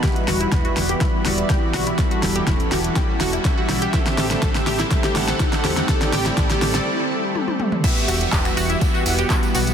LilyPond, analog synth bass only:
\new Staff \with { instrumentName = "Analog synth bass" } { \clef bass \time 4/4 \key e \minor \tempo 4 = 123 r8 e,,8 e,,8 e,,8 r8 e,,8 r8 b,,8 | r8 e,,8 e,,8 e,,8 r8 e,,8 r8 b,,8 | r8 a,,8 a,,8 a,,8 r8 a,,8 r8 e,8 | r8 a,,8 a,,8 a,,8 r2 |
r8 e,,8 e,,8 e,,8 r8 e,,8 r8 b,,8 | }